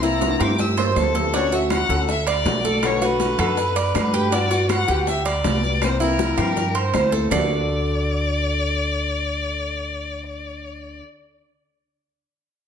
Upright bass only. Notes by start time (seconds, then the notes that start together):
Already playing: C2
0.40 G2
0.96 D2
1.89 D2
2.45 B1
3.38 F#2
3.94 G2
4.88 D2
5.44 C2
6.37 G2
6.93 D2
7.31 D2